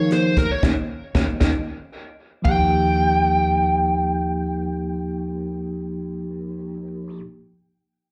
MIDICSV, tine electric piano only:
0, 0, Header, 1, 2, 480
1, 0, Start_track
1, 0, Tempo, 500000
1, 7793, End_track
2, 0, Start_track
2, 0, Title_t, "Tine electric piano"
2, 0, Program_c, 0, 4
2, 0, Note_on_c, 0, 53, 54
2, 0, Note_on_c, 0, 58, 49
2, 0, Note_on_c, 0, 63, 47
2, 0, Note_on_c, 0, 68, 63
2, 328, Note_off_c, 0, 53, 0
2, 329, Note_off_c, 0, 58, 0
2, 330, Note_off_c, 0, 63, 0
2, 333, Note_off_c, 0, 68, 0
2, 603, Note_on_c, 0, 63, 69
2, 605, Note_on_c, 0, 58, 73
2, 607, Note_on_c, 0, 61, 75
2, 682, Note_off_c, 0, 63, 0
2, 684, Note_off_c, 0, 58, 0
2, 685, Note_off_c, 0, 61, 0
2, 1105, Note_on_c, 0, 63, 74
2, 1108, Note_on_c, 0, 58, 71
2, 1108, Note_on_c, 0, 61, 74
2, 1184, Note_off_c, 0, 63, 0
2, 1186, Note_off_c, 0, 58, 0
2, 1186, Note_off_c, 0, 61, 0
2, 1355, Note_on_c, 0, 58, 77
2, 1356, Note_on_c, 0, 63, 80
2, 1358, Note_on_c, 0, 61, 76
2, 1434, Note_off_c, 0, 58, 0
2, 1435, Note_off_c, 0, 63, 0
2, 1436, Note_off_c, 0, 61, 0
2, 2325, Note_on_c, 0, 53, 53
2, 2342, Note_on_c, 0, 58, 52
2, 2360, Note_on_c, 0, 63, 54
2, 2381, Note_on_c, 0, 67, 61
2, 6893, Note_off_c, 0, 53, 0
2, 6909, Note_off_c, 0, 58, 0
2, 6927, Note_off_c, 0, 63, 0
2, 6948, Note_off_c, 0, 67, 0
2, 7793, End_track
0, 0, End_of_file